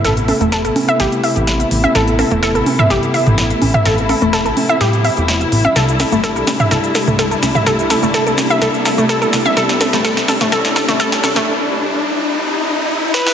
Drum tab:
HH |xxoxxxoxxxoxxxox|xxoxxxoxxxoxxxo-|xxoxxxoxxxoxxxo-|xxoxxxoxxxoxxxox|
SH |----------------|----------------|----------------|xxxxxxxxxxxxxxxx|
SD |o---o---o---o---|o---o---o---o---|o---o---o---o---|o-o-o-o-o-o-o-o-|
T2 |----------------|-------o---o---o|----------------|-------o---o---o|
CG |--o---o--------o|--o---o-------o-|--o---o--------o|--o---o-------o-|

HH |xxoxxxoxxxoxxxox|xxoxxxo-xxoxxxo-|----------------|
SH |xxxxxxxxxxxxxxxx|xxxxxxxxxxxxxxxx|----------------|
SD |o-o-o-o-o-o-o-o-|oooooooooooooooo|--------------oo|
T2 |----------------|-------o---o---o|----------------|
CG |--o---o--------o|--o---o-------o-|----------------|